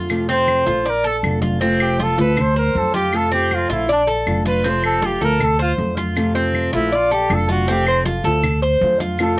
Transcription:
Already playing: F2 F4
0.09 C3 F3 A3 C4 F4, high conga, claves, maracas
0.29 C4 C5, high conga, maracas
0.48 high conga, claves, maracas
0.66 A#1 F3 A3 C4 F4, high conga, maracas
0.85 D5, muted nylon-string guitar stroke, high conga, maracas
0.90 A#4
1.04 A4, high conga, maracas
1.23 F1 D3 A3 D4 F4, high conga, claves, maracas
1.42 F4, high conga, maracas
1.61 C3 F3 A3 C4 F4, maracas
1.80 G4, high conga, claves, maracas
1.98 F4, high conga, maracas
2.03 A4
2.17 D2 F3 A3 C4 F4 A4 B4, maracas
2.37 muted nylon-string guitar stroke, high conga, low conga, claves, maracas
2.41 C5
2.56 A#4 C5, high conga, maracas
2.75 F2 D3 A3 C4 F4 A4, high conga, maracas
2.94 F4 G4, high conga, maracas
3.12 C3 F3 A3 C4 F4 A4, claves, maracas
3.32 C4 G4, high conga, maracas
3.51 high conga, claves, maracas
3.55 F4
3.69 A#1 F3 A3 C4 E4 F4, high conga, maracas
3.89 D4 D5, muted nylon-string guitar stroke, high conga, maracas
4.07 A4, high conga, maracas
4.27 F1 D3 A3 D4 F4, high conga, claves, maracas
4.45 F4 B4, high conga, maracas
4.64 C3 F3 A3 C4 F4, maracas
4.69 C5
4.83 A4, high conga, claves, maracas
5.02 F4 G4, high conga, maracas
5.21 D2 F3 A3 C4 F4 A4 A#4, high conga, maracas
5.40 muted nylon-string guitar stroke, high conga, low conga, claves, maracas
5.44 A4
5.59 F4 C5, high conga, maracas
5.78 F2 D3 A3 C4 F4, high conga, maracas
5.97 F4, high conga, maracas
6.16 C3 F3 A3 C4 F4, high conga, claves, maracas
6.35 C4, high conga, maracas
6.54 high conga, claves, maracas
6.73 A#1 F3 A3 C4 E4 F4, high conga, maracas
6.92 F4 D5, muted nylon-string guitar stroke, high conga, maracas
7.11 G4 A4, high conga, maracas
7.30 F1 D3 A3 D4 F4 A4, high conga, claves, maracas
7.49 F4 F#4, high conga, maracas
7.68 C3 F3 A3 C4 F4, maracas
7.72 G4
7.87 C5, high conga, claves, maracas
8.05 F4, high conga, maracas
8.24 D2 F3 A3 C4 F4 A4, high conga, maracas
8.43 muted nylon-string guitar stroke, high conga, low conga, claves, maracas
8.62 C5, high conga, maracas
8.81 F2 D3 A3 C4 F4, high conga, maracas
9.00 F4, high conga, maracas
9.18 C3 F3 A3 C4 F4 A4, high conga, claves, maracas

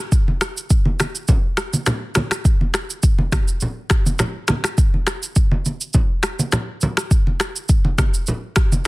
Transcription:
0.12 kick, shaker
0.28 high conga
0.41 finger snap, cross-stick, shaker
0.57 shaker
0.70 kick, shaker
0.85 high conga
1.00 finger snap, cross-stick, high conga, shaker
1.15 shaker
1.28 kick, low conga, shaker
1.57 finger snap, cross-stick, shaker
1.73 high conga, shaker
1.86 finger snap, cross-stick, low conga, shaker
2.15 finger snap, cross-stick, high conga, low conga, shaker
2.31 finger snap, cross-stick, shaker
2.45 kick, shaker
2.61 high conga
2.74 finger snap, cross-stick, shaker
2.90 shaker
3.03 kick, shaker
3.18 high conga
3.32 finger snap, kick, cross-stick, high conga, shaker
3.48 shaker
3.61 low conga, shaker
3.90 finger snap, kick, cross-stick, shaker
4.06 high conga, shaker
4.19 finger snap, cross-stick, low conga, shaker
4.48 finger snap, cross-stick, high conga, low conga, shaker
4.64 finger snap, cross-stick, shaker
4.78 kick, shaker
4.94 high conga
5.07 finger snap, cross-stick, shaker
5.23 shaker
5.36 kick, shaker
5.51 high conga
5.65 high conga, shaker
5.81 shaker
5.94 kick, low conga, shaker
6.23 finger snap, cross-stick, shaker
6.39 high conga, shaker
6.52 finger snap, cross-stick, low conga, shaker
6.81 high conga, low conga, shaker
6.97 finger snap, cross-stick, shaker
7.11 kick, shaker
7.27 high conga
7.40 finger snap, cross-stick, shaker
7.56 shaker
7.69 kick, shaker
7.85 high conga
7.98 finger snap, kick, cross-stick, high conga, shaker
8.14 shaker
8.27 low conga, shaker
8.56 finger snap, kick, cross-stick, shaker
8.72 high conga, shaker

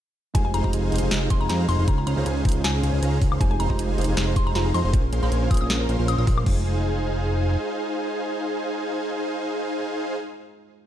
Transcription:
0.34 F1 G#3 D#4 F4 G4 G#4 C5 F5 G#5, kick, closed hi-hat
0.45 G#5
0.54 F1 D#4 G#4 C5 F5 A#5 C6, closed hi-hat
0.63 F1 G#3 D#4 F4 G4 G#4 C5 F5 A#5, kick
0.73 F1 D#4 G#4 C5 F5 G#5, closed hi-hat
0.90 F1 G#3 D#4 F4 G4 G#4 C5 F5 C6, closed hi-hat
0.96 closed hi-hat
0.98 D#4 C5, closed hi-hat
1.02 F1 G#4 F5 G#5
1.11 F1 D#4 G#4 C5 F5 A#5, snare, closed hi-hat
1.30 F1 D#4 G#4 C5 F5 G#5 C6, kick, closed hi-hat
1.41 F1 D#4 G#4 C5 F5 G#5 A#5
1.49 F2 D#4 G#4 C5 F5 A#5, snare, closed hi-hat
1.69 F1 D#4 G#4 C5 F5 A#5 C6, open hi-hat
1.79 F1 D#4 G#4 C5 F5 C6
1.86 C#2 G#3 C#4 D#4 F4 G#4 C5 F5 G#5 A#5, kick, closed hi-hat
1.98 A#5
2.07 C#2 C#4 G#4 C5 F5 A#5 C6, closed hi-hat
2.16 C#2 G#3 C#4 D#4 F4 G#4 C5 F5 A#5
2.26 C#2 C#4 G#4 C5 F5 G#5, closed hi-hat
2.43 C#2 G#3 C#4 D#4 F4 G#4 C5 F5 C6, kick, closed hi-hat
2.47 C5, closed hi-hat
2.52 C#2 C#4 G#4 C5 F5 G#5, closed hi-hat
2.64 C#2 C#4 G#4 C5 F5 G#5 A#5, snare, closed hi-hat
2.83 C#2 C#4 G#4 C5 F5 G#5, closed hi-hat
2.93 C#2 C#4 G#4 C5 F5 G#5
3.02 C#2 C#4 G#4 C5 F5 A#5, closed hi-hat
3.21 C#2 C#4 G#4 C5 F5 A#5, kick, open hi-hat
3.32 C#2 C#4 G#4 C5 F5 C6, high woodblock
3.40 F1 G#3 D#4 F4 G4 G#4 C5 F5 G#5, kick, closed hi-hat
3.51 G#4 G#5
3.60 F1 D#4 G#4 C5 F5 A#5 C6, closed hi-hat
3.69 F1 G#3 D#4 F4 G4 G#4 C5 F5 A#5, kick
3.79 F1 D#4 G#4 C5 F5 G#5, closed hi-hat
3.96 F1 G#3 D#4 F4 G4 G#4 C5 F5 C6, closed hi-hat
4.01 closed hi-hat
4.04 F1 D#4 G#4 F5 G#5, closed hi-hat
4.08 C5
4.17 F1 D#4 G#4 C5 F5 A#5, snare, closed hi-hat
4.27 C5
4.36 F1 D#4 G#4 C5 F5 G#5 C6, kick, closed hi-hat
4.47 F1 D#4 G#4 C5 F5 G#5 A#5
4.55 F1 D#4 F4 G#4 C5 F5 A#5, snare, closed hi-hat
4.66 G#4
4.74 F2 D#4 G#4 C5 F5 A#5 C6, open hi-hat
4.85 F1 D#4 G#4 C5 F5 C6
4.93 A#1 A#3 C#4 F4 G#4 A#4 C5 F5 G#5, kick, closed hi-hat
5.13 A#1 C#4 G#4 A#4 C5 F5 C6, closed hi-hat
5.22 A#1 A#3 C#4 F4 G#4 A#4 C5 F5 A#5 C6
5.32 A#1 C#4 A#4 C5 F5 G#5, closed hi-hat
5.42 C5
5.48 A#1 A#3 C#4 F4 G#4 A#4 C5 F5 C6 D#6, kick, closed hi-hat
5.52 C5, closed hi-hat
5.57 A#1 D#6, closed hi-hat
5.61 C#4 A#4 C5 F5 G#5
5.70 A#1 C#4 G#4 A#4 C5 F5 A#5, snare, closed hi-hat
5.80 A#4
5.89 A#1 C#4 A#4 C5 F5 C6, closed hi-hat
5.99 A#1 C#4 F4 A#4 C5 F5 C6
6.08 F4 D#6, closed hi-hat
6.18 A#1 C#4 A#4 C5 F5 C6 D#6
6.27 A#1 C#4 A#4 C5 F5 C6 D#6, kick, open hi-hat
6.38 F4, high woodblock
6.43 F1 G#3 D#4 F4 G#4 C5 F5 G#5, kick, crash
6.49 C5

